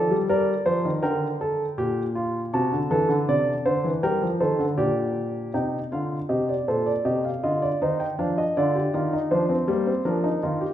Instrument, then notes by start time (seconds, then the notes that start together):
grand piano
Already playing: F3 A4 D5
0.11 G3
0.29 G3 A#4 D5
0.66 F3 C5
0.85 D#3
1.03 D3 A#4 G5
1.41 A4
1.78 A#2 G4
2.15 F4
2.53 C3 F#4 A5
2.73 D3
2.91 E3 A4
3.09 D3
3.28 C3 D5
3.65 D3 C5
3.84 E3
4.03 G3 A#4 G5
4.22 F3
4.40 D#3 A4 C5
4.59 D3
4.78 A#2 G4 D5
5.54 C3 D#4 G5
5.92 D3 F4 F5
6.29 C3 G4 D#5
6.49 D5
6.68 A#2 A4 C5
6.86 D5
7.05 C3 G4 D#5
7.25 F5
7.43 D3 F4 D#5
7.62 D5
7.82 D#3 D#4 C5
8.00 G5
8.19 F3 D4 F5
8.38 D#5
8.57 D3 F4 D5
8.76 G4
8.94 D#3 F4
9.13 D#4
9.31 F3 D4 C5
9.49 C4
9.68 G3 A#3
9.87 C4
10.05 F3 D4 A#4
10.24 D#4
10.43 D#3 F4
10.61 G4